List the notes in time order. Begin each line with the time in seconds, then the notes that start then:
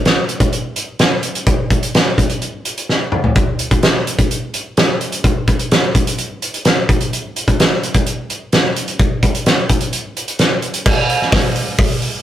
0.05 snare, closed hi-hat
0.29 closed hi-hat
0.40 kick, closed hi-hat
0.53 closed hi-hat
0.76 closed hi-hat
0.99 snare, closed hi-hat
1.23 closed hi-hat
1.35 closed hi-hat
1.47 kick, closed hi-hat
1.70 kick, closed hi-hat
1.83 closed hi-hat
1.94 snare, closed hi-hat
2.18 kick, closed hi-hat
2.29 closed hi-hat
2.42 closed hi-hat
2.65 closed hi-hat
2.77 closed hi-hat
2.89 snare
3.12 mid tom
3.24 floor tom
3.35 kick, closed hi-hat
3.59 closed hi-hat
3.71 kick, closed hi-hat
3.83 snare, closed hi-hat
4.07 closed hi-hat
4.19 kick, closed hi-hat
4.31 closed hi-hat
4.54 closed hi-hat
4.77 snare, closed hi-hat
5.01 closed hi-hat
5.12 closed hi-hat
5.24 kick, closed hi-hat
5.48 kick, closed hi-hat
5.59 closed hi-hat
5.71 snare, closed hi-hat
5.95 kick, closed hi-hat
6.07 closed hi-hat
6.18 closed hi-hat
6.42 closed hi-hat
6.54 closed hi-hat
6.65 snare, closed hi-hat
6.89 kick, closed hi-hat
7.00 closed hi-hat
7.13 closed hi-hat
7.36 closed hi-hat
7.48 kick, closed hi-hat
7.60 snare, closed hi-hat
7.83 closed hi-hat
7.94 kick, closed hi-hat
8.06 closed hi-hat
8.30 closed hi-hat
8.52 snare, closed hi-hat
8.76 closed hi-hat
8.88 closed hi-hat
8.99 kick, closed hi-hat
9.23 kick, closed hi-hat
9.35 closed hi-hat
9.46 snare, closed hi-hat
9.69 kick, closed hi-hat
9.80 closed hi-hat
9.93 closed hi-hat
10.17 closed hi-hat
10.28 closed hi-hat
10.39 snare, closed hi-hat
10.62 closed hi-hat
10.74 closed hi-hat
10.86 kick, crash
11.09 open hi-hat
11.22 snare
11.32 kick, snare, open hi-hat
11.56 open hi-hat
11.78 kick, open hi-hat
12.02 open hi-hat